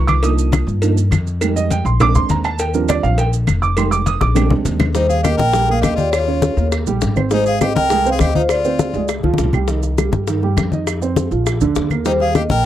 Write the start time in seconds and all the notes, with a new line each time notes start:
Already playing: C2 F3 B3 D#4
0.07 D6, cowbell, high conga, claves, maracas
0.23 F3 A#3 D4 D#4 D#6, cowbell, high conga, maracas
0.38 high conga, maracas
0.52 cowbell, high conga, claves, maracas
0.67 G2, high conga, maracas
0.82 F3 A#3 D4 D#4, cowbell, high conga, maracas
0.97 high conga, maracas
1.11 F2, cowbell, high conga, claves, maracas
1.27 high conga, maracas
1.41 G3 G#3 D#4, cowbell, high conga, claves, maracas
1.56 D#5, high conga, maracas
1.71 G5, cowbell, high conga, maracas
1.85 A#1 C6, high conga, maracas
2.00 G#3 C4 D4 D6, cowbell, high conga, low conga, claves, maracas
2.15 D2 C6, high conga, low conga, maracas
2.29 D#2 A#5, cowbell, high conga, maracas
2.44 A5, cowbell, claves, maracas
2.59 G5, cowbell, high conga, maracas
2.74 F3 G3 C4 D4 A#4, high conga, maracas
2.88 D5, cowbell, high conga, claves, maracas
3.03 A#1 F5, high conga, maracas
3.18 G5, cowbell, high conga, maracas
3.33 high conga, maracas
3.47 F1, cowbell, high conga, claves, maracas
3.62 D6, high conga, maracas
3.77 G3 G#3 D#4 C6, cowbell, high conga, claves, maracas
3.91 D6, high conga, maracas
4.06 D#6, cowbell, high conga, maracas
4.21 A#1 D6, high bongo, high conga, maracas
4.34 G3 G#3 C4 D4, cowbell, low bongo, claves, maracas
4.50 D2, low bongo, low conga
4.65 D#2, cowbell, low conga, maracas
4.80 cowbell, low bongo, low conga, claves, maracas
4.95 G3 D#4 G4 C5, high bongo, high conga, maracas
5.09 G#4 F5, high bongo, high conga, maracas
5.23 A#3 G4 A#4 D#5, high bongo, high conga, claves, maracas
5.37 A#1 A#4 G5, high bongo, high conga, maracas
5.53 G3 G4, high bongo, high conga, maracas
5.68 A#3 G#4 A#4, high bongo, high conga
5.72 F5
5.81 D#2 G4 D#5, high bongo, low bongo, high conga, claves, maracas
5.96 F4 G4 D5 G5, high conga, maracas
6.11 F4 C#5, high bongo, high conga, claves, maracas
6.28 C#4 C#5, high bongo, high conga
6.42 high bongo, high conga, maracas
6.57 D#2 A#3 A#4, high bongo, maracas
6.72 high bongo, high conga, claves, maracas
6.87 A#1 G3 G4, high bongo, high conga, maracas
7.01 G#1, high bongo, low bongo, high conga, maracas
7.16 C4 C5, high conga, claves, maracas
7.31 G#3 D#4 G#4 C5, high bongo, high conga, maracas
7.46 G#4 F5, high bongo, high conga, maracas
7.61 C4 G4 C5 D#5, high bongo, high conga, claves, maracas
7.75 C2 A#4 G5, high bongo, high conga, maracas
7.90 G#3 G#4, high bongo, high conga, maracas
8.05 C4 C5, high bongo, high conga, maracas
8.10 G#4 F5
8.19 D2 G4 D#5, high bongo, low bongo, high conga, claves, maracas
8.35 D#4 F4 C5 F5, high conga, maracas
8.49 F4 D5, high bongo, high conga, claves, maracas
8.65 C4 C5, high bongo, high conga, maracas
8.79 high bongo, high conga, maracas
8.94 C#2 G#3 G#4, high bongo, maracas
9.08 high bongo, high conga, claves, maracas
9.23 C#2 F3 F4, high bongo, high conga
9.34 high conga
9.38 C2, high bongo, low bongo, maracas
9.44 low conga
9.53 G3 G4, low conga, claves, maracas
9.68 D#3 D#4, high bongo, high conga, maracas
9.83 high bongo, high conga, maracas
9.98 G3 G4, high bongo, high conga, claves, maracas
10.12 G2, high bongo, high conga, maracas
10.27 D#3 D#4, high bongo, high conga, maracas
10.42 G3 G4, high bongo, high conga
10.56 F2, high bongo, low bongo, high conga, claves, maracas
10.72 D#4 D#5, high conga, maracas
10.87 high bongo, high conga, claves, maracas
11.01 C4 C5, high bongo, high conga, maracas
11.16 high bongo, high conga, maracas
11.31 A#1 F3 F4, high bongo, maracas
11.46 high bongo, high conga, claves, maracas
11.61 D2 D3 D4, high bongo, high conga, maracas
11.75 D#2, high bongo, low bongo, high conga, maracas
11.90 A#3 A#4, high conga, claves, maracas
12.05 G3 D#4 G4 C5, high bongo, high conga, maracas
12.20 G#4 F5, high bongo, high conga
12.35 A#3 G4 A#4 D#5, high bongo, high conga, claves, maracas
12.49 A#1 A#4 G5, high bongo, high conga, maracas